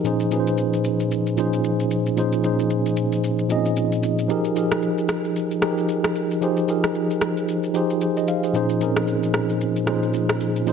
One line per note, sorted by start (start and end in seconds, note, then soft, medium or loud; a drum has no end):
0.04 0.26 A#2 medium
0.04 0.27 F3 medium
0.04 0.27 C#4 medium
0.04 0.27 D#4 medium
0.04 0.28 G#4 medium
0.04 0.28 C5 medium
0.04 shaker medium
0.20 shaker soft
0.30 1.17 A#2 medium
0.30 1.17 F3 medium
0.30 1.17 C#4 medium
0.30 1.18 D#4 medium
0.30 1.18 G#4 medium
0.30 0.40 B4 medium
0.30 shaker medium
0.40 1.21 C5 medium
0.47 shaker medium
0.58 shaker medium
0.73 shaker medium
0.84 shaker medium
1.00 shaker medium
1.11 shaker medium
1.27 shaker soft
1.36 2.02 A#2 medium
1.36 2.03 F3 medium
1.36 2.03 C#4 medium
1.36 2.03 D#4 medium
1.36 2.04 G#4 medium
1.36 2.04 C5 medium
1.36 shaker medium
1.53 shaker medium
1.64 shaker medium
1.80 shaker soft
1.91 shaker medium
2.06 shaker medium
2.16 2.39 A#2 medium
2.16 2.39 F3 medium
2.16 2.39 C#4 medium
2.16 2.40 D#4 medium
2.16 2.40 G#4 medium
2.16 2.40 C5 medium
2.16 shaker medium
2.32 shaker soft
2.43 3.29 A#2 medium
2.43 3.29 F3 medium
2.43 3.30 C#4 medium
2.43 3.30 D#4 medium
2.43 3.30 G#4 medium
2.43 3.31 C5 medium
2.43 shaker medium
2.59 shaker soft
2.70 shaker medium
2.86 shaker soft
2.97 shaker medium
3.12 shaker medium
3.24 shaker medium
3.39 shaker soft
3.49 4.15 A#2 medium
3.49 4.15 F3 medium
3.49 3.57 C4 medium
3.49 4.16 D#4 medium
3.49 4.16 G#4 medium
3.49 4.16 D#5 medium
3.49 shaker medium
3.56 4.19 C#4 medium
3.65 shaker medium
3.76 shaker medium
3.92 shaker medium
4.03 shaker medium
4.19 shaker medium
4.28 4.51 F3 medium
4.28 4.51 D#4 medium
4.28 4.52 G4 medium
4.28 4.52 G#4 medium
4.28 4.53 A#4 medium
4.28 shaker medium
4.45 shaker soft
4.55 5.41 F3 medium
4.55 5.42 D#4 medium
4.55 5.42 G4 medium
4.55 5.43 G#4 medium
4.55 5.43 A#4 medium
4.55 shaker medium
4.72 cross-stick medium
4.72 shaker medium
4.82 shaker medium
4.98 shaker medium
5.09 cross-stick medium
5.09 shaker medium
5.25 shaker medium
5.36 shaker medium
5.51 shaker soft
5.61 6.27 F3 medium
5.61 6.28 D#4 medium
5.61 6.28 G4 medium
5.61 6.28 G#4 medium
5.61 6.29 A#4 medium
5.61 cross-stick medium
5.61 shaker medium
5.78 shaker medium
5.89 shaker medium
6.04 cross-stick loud
6.04 shaker medium
6.15 shaker medium
6.31 shaker medium
6.41 6.63 F3 medium
6.41 6.64 D#4 medium
6.41 6.64 G4 medium
6.41 6.65 G#4 medium
6.41 6.65 C5 medium
6.41 shaker medium
6.57 shaker soft
6.67 7.54 F3 medium
6.67 7.54 D#4 medium
6.67 7.55 G4 medium
6.67 7.55 G#4 medium
6.67 7.55 A#4 medium
6.67 shaker medium
6.84 cross-stick medium
6.84 shaker soft
6.95 shaker medium
7.11 shaker medium
7.21 cross-stick medium
7.21 shaker medium
7.37 shaker medium
7.49 shaker medium
7.63 shaker soft
7.73 8.40 F3 medium
7.73 8.40 D#4 medium
7.73 8.01 G4 medium
7.73 8.01 G#4 medium
7.73 8.00 C5 medium
7.73 shaker medium
7.90 shaker medium
8.01 8.16 G#4 medium
8.01 8.16 C5 medium
8.01 shaker medium
8.17 8.28 C5 medium
8.17 8.28 D#5 medium
8.17 shaker medium
8.28 8.43 F5 medium
8.28 shaker medium
8.43 8.54 G#4 medium
8.43 8.55 C5 medium
8.43 shaker medium
8.53 8.76 A#2 medium
8.53 8.76 F3 medium
8.53 8.76 C#4 medium
8.53 8.77 D#4 medium
8.53 8.77 G#4 medium
8.53 8.77 C5 medium
8.53 shaker medium
8.69 shaker soft
8.80 9.66 A#2 medium
8.80 9.66 F3 medium
8.80 8.88 C4 medium
8.80 9.67 D#4 medium
8.80 9.67 G#4 medium
8.80 9.68 A#4 medium
8.80 shaker medium
8.87 9.70 C#4 medium
8.96 cross-stick medium
8.96 shaker soft
9.07 shaker medium
9.23 shaker medium
9.34 cross-stick medium
9.34 shaker loud
9.49 shaker medium
9.61 shaker medium
9.76 shaker soft
9.86 10.52 A#2 medium
9.86 10.52 F3 medium
9.86 10.53 C#4 medium
9.86 10.53 D#4 medium
9.86 10.53 G#4 medium
9.86 10.54 C5 medium
9.86 cross-stick medium
9.86 shaker medium
10.03 shaker medium
10.14 shaker medium
10.29 cross-stick loud
10.29 shaker soft
10.40 shaker medium
10.56 shaker medium
10.65 10.73 A#2 medium
10.65 10.73 F3 medium
10.65 10.73 C#4 medium
10.65 10.73 D#4 medium
10.65 10.73 G#4 medium
10.65 10.73 C5 medium
10.65 shaker medium